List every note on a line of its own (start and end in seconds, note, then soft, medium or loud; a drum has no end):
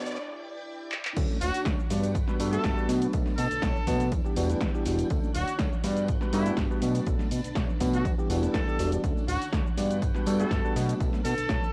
0.00 0.18 B2 loud
0.00 0.17 D4 medium
0.00 0.17 B4 medium
0.00 0.17 A5 medium
0.00 riser medium
0.06 closed hi-hat medium
0.06 tambourine soft
0.06 shaker soft
0.18 1.16 E4 medium
0.18 1.16 D5 medium
0.18 1.16 G5 medium
0.92 clap medium
1.05 clap loud
1.16 1.26 D2 loud
1.16 1.36 F#3 medium
1.16 1.36 A3 medium
1.16 1.36 C#4 medium
1.16 1.90 D4 medium
1.16 1.36 D4 medium
1.16 1.37 A4 medium
1.16 1.90 C#5 medium
1.16 1.89 F#5 medium
1.16 kick loud
1.16 closed hi-hat medium
1.16 crash loud
1.16 tambourine medium
1.16 shaker soft
1.29 tambourine soft
1.29 high conga loud
1.29 shaker soft
1.41 1.51 D1 medium
1.41 1.61 F#4 medium
1.41 open hi-hat loud
1.41 tambourine loud
1.41 shaker medium
1.54 closed hi-hat medium
1.54 tambourine soft
1.54 shaker soft
1.65 1.75 D2 medium
1.65 1.79 F#3 medium
1.65 1.79 A3 medium
1.65 1.79 C#4 medium
1.65 1.79 D4 medium
1.65 1.79 C#5 medium
1.65 kick loud
1.65 snare loud
1.65 closed hi-hat medium
1.65 tambourine medium
1.65 shaker soft
1.79 low conga loud
1.79 shaker soft
1.90 2.17 G2 loud
1.90 2.10 G3 medium
1.90 2.10 B3 medium
1.90 2.10 D4 medium
1.90 2.10 F#4 medium
1.90 4.10 B4 medium
1.90 2.10 D5 medium
1.90 2.88 F#5 medium
1.90 2.88 G5 medium
1.90 open hi-hat loud
1.90 tambourine medium
1.90 high conga medium
1.90 low conga loud
1.90 shaker medium
2.03 closed hi-hat medium
2.03 tambourine soft
2.03 shaker soft
2.14 2.25 G1 medium
2.14 kick loud
2.14 closed hi-hat medium
2.14 tambourine medium
2.14 shaker soft
2.28 2.37 G3 medium
2.28 2.37 B3 medium
2.28 2.37 D4 medium
2.28 2.38 F#4 medium
2.28 2.38 B4 loud
2.28 snare soft
2.28 shaker soft
2.40 2.58 G2 loud
2.40 2.51 G3 loud
2.40 2.51 B3 medium
2.40 2.51 D4 medium
2.40 2.51 F#4 medium
2.40 2.51 A4 loud
2.40 open hi-hat loud
2.40 tambourine loud
2.40 shaker medium
2.52 2.74 G3 medium
2.52 2.74 B3 medium
2.52 2.74 D4 medium
2.52 2.74 F#4 medium
2.52 2.89 A4 medium
2.52 2.74 E5 medium
2.52 closed hi-hat medium
2.52 tambourine soft
2.52 high conga loud
2.52 shaker soft
2.64 2.74 G1 loud
2.64 kick loud
2.64 snare loud
2.64 closed hi-hat medium
2.64 tambourine medium
2.64 shaker soft
2.77 2.86 G3 medium
2.77 2.86 B3 medium
2.77 2.86 D4 medium
2.77 2.86 F#4 medium
2.77 2.86 B4 loud
2.77 shaker soft
2.89 3.07 B2 loud
2.89 3.11 F#3 medium
2.89 3.11 A3 medium
2.89 3.11 B3 medium
2.89 4.11 D4 medium
2.89 3.11 D4 medium
2.89 3.11 F#4 medium
2.89 4.11 A5 medium
2.89 open hi-hat loud
2.89 tambourine medium
2.89 shaker medium
3.01 closed hi-hat medium
3.01 tambourine soft
3.01 shaker soft
3.13 3.23 B1 loud
3.13 3.33 F#3 medium
3.13 3.33 A3 medium
3.13 3.33 B3 medium
3.13 3.33 D4 medium
3.13 3.33 A4 medium
3.13 kick loud
3.13 closed hi-hat medium
3.13 tambourine medium
3.13 shaker soft
3.26 snare soft
3.26 tambourine soft
3.26 high conga loud
3.26 shaker soft
3.38 3.48 B2 medium
3.38 4.07 A4 loud
3.38 open hi-hat loud
3.38 tambourine loud
3.38 shaker medium
3.51 3.60 B1 soft
3.51 closed hi-hat soft
3.51 tambourine soft
3.51 shaker soft
3.62 3.72 B1 loud
3.62 3.75 F#3 medium
3.62 3.75 A3 medium
3.62 3.75 B3 medium
3.62 3.76 D4 medium
3.62 3.76 C#5 medium
3.62 kick loud
3.62 snare loud
3.62 closed hi-hat medium
3.62 tambourine medium
3.62 shaker soft
3.76 low conga medium
3.76 shaker soft
3.86 4.14 B2 loud
3.86 4.07 F#3 medium
3.86 4.07 A3 medium
3.86 4.07 B3 medium
3.86 4.07 D4 medium
3.86 4.07 B4 medium
3.86 kick medium
3.86 open hi-hat loud
3.86 tambourine loud
3.86 high conga medium
3.86 low conga loud
3.86 shaker medium
4.00 closed hi-hat medium
4.00 tambourine soft
4.00 shaker soft
4.12 4.21 E2 medium
4.12 5.09 E4 medium
4.12 5.09 D5 medium
4.12 5.09 G5 medium
4.12 kick loud
4.12 closed hi-hat medium
4.12 tambourine medium
4.12 shaker soft
4.24 4.34 E3 medium
4.24 4.34 G3 medium
4.24 4.34 B3 medium
4.24 4.34 D4 medium
4.24 4.34 G4 loud
4.24 shaker soft
4.36 4.55 E1 medium
4.36 4.47 E3 medium
4.36 4.47 G3 medium
4.36 4.48 B3 medium
4.36 4.48 D4 medium
4.36 4.48 F#4 loud
4.36 open hi-hat loud
4.36 tambourine loud
4.36 shaker medium
4.49 4.71 E3 medium
4.49 4.71 G3 medium
4.49 4.71 B3 medium
4.49 4.71 D4 medium
4.49 4.71 B4 loud
4.49 closed hi-hat medium
4.49 tambourine soft
4.49 high conga loud
4.49 shaker soft
4.61 4.71 E2 loud
4.61 kick loud
4.61 snare loud
4.61 closed hi-hat medium
4.61 tambourine medium
4.61 shaker soft
4.74 4.83 E3 medium
4.74 4.83 G3 medium
4.74 4.83 B3 medium
4.74 4.83 D4 medium
4.74 4.83 G4 loud
4.74 shaker soft
4.85 5.04 E1 loud
4.85 5.07 E3 medium
4.85 5.07 G3 medium
4.85 5.08 B3 medium
4.85 5.08 D4 medium
4.85 5.08 F#4 medium
4.85 open hi-hat loud
4.85 tambourine medium
4.85 shaker medium
4.98 closed hi-hat medium
4.98 tambourine soft
4.98 shaker soft
5.10 5.20 D2 loud
5.10 5.30 F#3 medium
5.10 5.30 A3 medium
5.10 5.30 C#4 medium
5.10 5.83 D4 medium
5.10 5.30 D4 medium
5.10 5.30 A4 medium
5.10 5.83 C#5 medium
5.10 5.83 F#5 medium
5.10 kick loud
5.10 closed hi-hat medium
5.10 tambourine medium
5.10 shaker soft
5.23 tambourine soft
5.23 high conga loud
5.23 shaker soft
5.34 5.44 D1 medium
5.34 5.54 F#4 loud
5.34 open hi-hat loud
5.34 tambourine medium
5.34 shaker medium
5.47 closed hi-hat soft
5.47 tambourine soft
5.47 shaker soft
5.59 5.69 D2 medium
5.59 5.72 F#3 medium
5.59 5.72 A3 medium
5.59 5.72 C#4 medium
5.59 5.72 D4 medium
5.59 5.73 C#5 medium
5.59 kick loud
5.59 snare loud
5.59 closed hi-hat medium
5.59 tambourine medium
5.59 shaker soft
5.73 low conga medium
5.73 shaker soft
5.84 6.10 G2 loud
5.84 6.03 G3 medium
5.84 6.03 B3 medium
5.84 6.04 D4 medium
5.84 6.04 F#4 medium
5.84 8.03 B4 medium
5.84 6.04 D5 medium
5.84 6.81 F#5 medium
5.84 6.81 G5 medium
5.84 open hi-hat loud
5.84 tambourine loud
5.84 high conga medium
5.84 low conga medium
5.84 shaker medium
5.97 closed hi-hat medium
5.97 tambourine soft
5.97 shaker soft
6.08 6.18 G1 medium
6.08 kick loud
6.08 closed hi-hat medium
6.08 shaker soft
6.21 6.31 G3 medium
6.21 6.31 B3 medium
6.21 6.31 D4 medium
6.21 6.31 F#4 medium
6.21 6.31 B4 loud
6.21 snare soft
6.21 shaker soft
6.33 6.52 G2 medium
6.33 6.44 G3 medium
6.33 6.44 B3 medium
6.33 6.44 D4 medium
6.33 6.53 E4 medium
6.33 6.44 F#4 medium
6.33 6.45 A4 loud
6.33 open hi-hat loud
6.33 tambourine medium
6.33 shaker medium
6.46 6.67 G3 medium
6.46 6.68 B3 medium
6.46 6.68 D4 medium
6.46 6.68 F#4 medium
6.46 6.68 E5 medium
6.46 closed hi-hat soft
6.46 tambourine soft
6.46 high conga loud
6.46 shaker soft
6.57 6.67 G1 loud
6.57 kick loud
6.57 snare loud
6.57 closed hi-hat medium
6.57 tambourine medium
6.57 shaker soft
6.70 6.79 G3 medium
6.70 6.80 B3 medium
6.70 6.80 D4 medium
6.70 6.80 F#4 medium
6.70 6.80 B4 loud
6.70 shaker soft
6.82 7.01 B2 loud
6.82 7.04 F#3 medium
6.82 7.04 A3 medium
6.82 7.04 B3 medium
6.82 8.04 D4 medium
6.82 7.04 D4 medium
6.82 7.05 F#4 medium
6.82 8.04 A5 medium
6.82 open hi-hat loud
6.82 tambourine medium
6.82 shaker medium
6.95 closed hi-hat medium
6.95 tambourine soft
6.95 shaker soft
7.07 7.16 B1 loud
7.07 7.26 F#3 medium
7.07 7.26 A3 medium
7.07 7.27 B3 medium
7.07 7.27 D4 medium
7.07 7.27 A4 medium
7.07 kick loud
7.07 closed hi-hat medium
7.07 tambourine soft
7.07 shaker soft
7.19 snare soft
7.19 tambourine soft
7.19 high conga loud
7.19 shaker soft
7.31 7.41 B2 medium
7.31 open hi-hat loud
7.31 tambourine medium
7.31 shaker medium
7.44 7.54 B1 soft
7.44 closed hi-hat soft
7.44 tambourine soft
7.44 shaker soft
7.55 7.66 B1 medium
7.55 7.69 F#3 medium
7.55 7.69 A3 medium
7.55 7.69 B3 medium
7.55 7.69 D4 medium
7.55 7.69 C#5 medium
7.55 kick loud
7.55 snare loud
7.55 closed hi-hat medium
7.55 tambourine soft
7.55 shaker soft
7.69 low conga medium
7.69 shaker soft
7.80 8.07 B2 loud
7.80 8.00 F#3 medium
7.80 8.00 A3 medium
7.80 8.00 B3 medium
7.80 8.00 D4 medium
7.80 8.01 B4 medium
7.80 kick medium
7.80 open hi-hat loud
7.80 tambourine loud
7.80 high conga medium
7.80 low conga loud
7.80 shaker medium
7.94 8.11 F#4 medium
7.94 closed hi-hat soft
7.94 tambourine soft
7.94 shaker soft
8.05 8.15 E2 medium
8.05 9.03 E4 medium
8.05 9.03 D5 medium
8.05 9.03 G5 medium
8.05 kick loud
8.05 closed hi-hat medium
8.05 tambourine medium
8.05 shaker soft
8.18 8.28 E3 medium
8.18 8.28 G3 medium
8.18 8.28 B3 medium
8.18 8.28 D4 medium
8.18 8.28 G4 loud
8.18 shaker soft
8.30 8.48 E1 loud
8.30 8.41 E3 medium
8.30 8.41 G3 medium
8.30 8.41 B3 medium
8.30 8.41 D4 medium
8.30 8.41 F#4 loud
8.30 open hi-hat loud
8.30 tambourine medium
8.30 shaker medium
8.42 8.64 E3 medium
8.42 8.64 G3 medium
8.42 8.64 B3 medium
8.42 8.65 D4 medium
8.42 8.65 B4 medium
8.42 closed hi-hat soft
8.42 tambourine soft
8.42 high conga loud
8.42 shaker soft
8.54 8.64 E2 loud
8.54 8.92 A4 loud
8.54 kick loud
8.54 snare loud
8.54 closed hi-hat medium
8.54 tambourine soft
8.54 shaker soft
8.67 8.76 E3 medium
8.67 8.76 G3 medium
8.67 8.76 B3 medium
8.67 8.76 D4 medium
8.67 8.77 G4 loud
8.67 shaker soft
8.79 8.97 E1 loud
8.79 9.01 E3 medium
8.79 9.01 G3 medium
8.79 9.01 B3 medium
8.79 9.01 D4 medium
8.79 9.01 F#4 medium
8.79 open hi-hat loud
8.79 tambourine medium
8.79 shaker medium
8.92 closed hi-hat medium
8.92 tambourine soft
8.92 shaker soft
9.03 9.13 D2 loud
9.03 9.23 F#3 medium
9.03 9.23 A3 medium
9.03 9.23 C#4 medium
9.03 9.77 D4 medium
9.03 9.23 D4 medium
9.03 9.24 A4 medium
9.03 9.77 C#5 medium
9.03 9.76 F#5 medium
9.03 kick loud
9.03 closed hi-hat medium
9.03 tambourine soft
9.03 shaker soft
9.16 tambourine soft
9.16 high conga loud
9.16 shaker soft
9.28 9.38 D1 medium
9.28 9.48 F#4 medium
9.28 open hi-hat loud
9.28 tambourine medium
9.28 shaker medium
9.42 closed hi-hat soft
9.42 tambourine soft
9.42 shaker soft
9.53 9.62 D2 medium
9.53 9.66 F#3 medium
9.53 9.66 A3 medium
9.53 9.66 C#4 medium
9.53 9.66 D4 medium
9.53 9.66 C#5 medium
9.53 kick loud
9.53 snare loud
9.53 closed hi-hat medium
9.53 tambourine soft
9.53 shaker soft
9.67 low conga medium
9.67 shaker soft
9.77 10.04 G2 loud
9.77 9.97 G3 medium
9.77 9.97 B3 medium
9.77 9.97 D4 medium
9.77 9.97 F#4 medium
9.77 10.75 B4 medium
9.77 9.97 D5 medium
9.77 10.75 F#5 medium
9.77 10.75 G5 medium
9.77 open hi-hat loud
9.77 tambourine medium
9.77 high conga medium
9.77 low conga medium
9.77 shaker medium
9.91 closed hi-hat soft
9.91 tambourine soft
9.91 shaker soft
10.02 10.12 G1 medium
10.02 kick loud
10.02 closed hi-hat medium
10.02 tambourine medium
10.02 shaker soft
10.15 10.24 G3 medium
10.15 10.24 B3 medium
10.15 10.25 D4 medium
10.15 10.25 F#4 medium
10.15 10.25 B4 loud
10.15 snare soft
10.15 shaker soft
10.26 10.45 G2 medium
10.26 10.37 G3 loud
10.26 10.38 B3 medium
10.26 10.38 D4 medium
10.26 10.38 F#4 medium
10.26 10.38 A4 loud
10.26 open hi-hat loud
10.26 tambourine medium
10.26 shaker medium
10.39 10.61 G3 medium
10.39 10.61 B3 medium
10.39 10.61 D4 medium
10.39 10.61 F#4 medium
10.39 10.76 A4 medium
10.39 10.61 E5 medium
10.39 closed hi-hat soft
10.39 tambourine soft
10.39 high conga medium
10.39 shaker soft
10.51 10.61 G1 medium
10.51 kick loud
10.51 snare loud
10.51 closed hi-hat medium
10.51 tambourine medium
10.51 shaker soft
10.64 10.73 G3 medium
10.64 10.73 B3 medium
10.64 10.73 D4 medium
10.64 10.73 F#4 medium
10.64 10.73 B4 loud
10.64 shaker soft
10.76 10.94 B2 loud
10.76 10.97 F#3 medium
10.76 10.98 A3 medium
10.76 10.98 B3 medium
10.76 11.73 D4 medium
10.76 10.98 D4 medium
10.76 10.98 F#4 medium
10.76 11.73 B4 medium
10.76 11.73 A5 medium
10.76 open hi-hat loud
10.76 tambourine medium
10.76 shaker medium
10.89 closed hi-hat medium
10.89 tambourine soft
10.89 shaker soft
11.00 11.10 B1 loud
11.00 11.20 F#3 medium
11.00 11.20 A3 medium
11.00 11.20 B3 medium
11.00 11.20 D4 medium
11.00 11.20 A4 medium
11.00 kick loud
11.00 closed hi-hat medium
11.00 tambourine medium
11.00 shaker soft
11.13 snare soft
11.13 tambourine soft
11.13 high conga medium
11.13 shaker soft
11.25 11.34 B2 medium
11.25 11.73 A4 loud
11.25 open hi-hat loud
11.25 tambourine loud
11.25 shaker medium
11.38 11.47 B1 soft
11.38 closed hi-hat medium
11.38 tambourine soft
11.38 shaker soft
11.49 11.59 B1 medium
11.49 11.62 F#3 medium
11.49 11.62 A3 medium
11.49 11.62 B3 medium
11.49 11.62 D4 medium
11.49 11.63 C#5 medium
11.49 kick loud
11.49 snare loud
11.49 closed hi-hat medium
11.49 tambourine soft
11.49 shaker soft
11.63 low conga medium
11.63 shaker soft